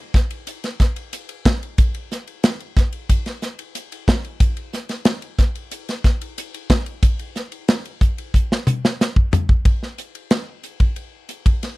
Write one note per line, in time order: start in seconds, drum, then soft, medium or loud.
0.14 kick medium
0.14 snare soft
0.14 hi-hat pedal medium
0.31 ride medium
0.47 hi-hat pedal medium
0.47 ride medium
0.64 snare soft
0.64 ride medium
0.80 kick medium
0.80 snare soft
0.80 hi-hat pedal medium
0.96 ride medium
1.13 hi-hat pedal medium
1.13 ride medium
1.29 ride medium
1.45 kick medium
1.45 snare loud
1.45 hi-hat pedal medium
1.63 ride medium
1.78 kick loud
1.78 hi-hat pedal medium
1.78 ride medium
1.94 ride medium
2.11 snare soft
2.11 hi-hat pedal medium
2.27 ride medium
2.43 snare loud
2.43 hi-hat pedal medium
2.43 ride medium
2.60 ride medium
2.77 kick medium
2.77 snare soft
2.77 hi-hat pedal medium
2.92 ride medium
3.09 kick medium
3.09 hi-hat pedal medium
3.09 ride medium
3.26 snare soft
3.26 ride medium
3.42 snare soft
3.42 hi-hat pedal medium
3.59 ride medium
3.75 hi-hat pedal medium
3.75 ride medium
3.92 ride medium
4.08 kick medium
4.08 snare loud
4.08 hi-hat pedal medium
4.24 ride medium
4.40 kick loud
4.40 hi-hat pedal medium
4.40 ride medium
4.57 ride medium
4.73 snare soft
4.73 hi-hat pedal medium
4.89 snare soft
4.89 ride medium
5.05 snare loud
5.05 hi-hat pedal medium
5.05 ride medium
5.22 ride medium
5.38 kick medium
5.38 snare soft
5.38 hi-hat pedal medium
5.55 ride medium
5.71 hi-hat pedal medium
5.71 ride medium
5.89 snare soft
5.89 ride medium
6.04 kick medium
6.04 snare soft
6.04 hi-hat pedal medium
6.21 ride medium
6.38 hi-hat pedal medium
6.38 ride medium
6.54 ride medium
6.70 kick medium
6.70 snare loud
6.70 hi-hat pedal medium
6.86 ride medium
7.03 kick loud
7.03 hi-hat pedal medium
7.03 ride medium
7.19 ride medium
7.35 snare soft
7.35 hi-hat pedal medium
7.52 ride medium
7.68 snare loud
7.68 hi-hat pedal medium
7.68 ride medium
7.85 ride medium
8.01 kick medium
8.01 hi-hat pedal medium
8.18 ride medium
8.34 kick medium
8.34 hi-hat pedal medium
8.52 snare medium
8.67 hi-hat pedal medium
8.67 mid tom medium
8.85 snare medium
9.01 snare medium
9.01 hi-hat pedal medium
9.16 kick medium
9.33 floor tom medium
9.33 hi-hat pedal medium
9.49 kick medium
9.65 kick medium
9.65 ride medium
9.83 snare soft
9.98 hi-hat pedal medium
9.98 ride medium
10.15 ride medium
10.30 snare medium
10.30 ride medium
10.63 hi-hat pedal medium
10.63 ride medium
10.80 kick medium
10.80 ride medium
10.96 ride medium
11.29 hi-hat pedal medium
11.29 ride medium
11.46 kick medium
11.46 ride medium
11.63 snare soft
11.63 ride medium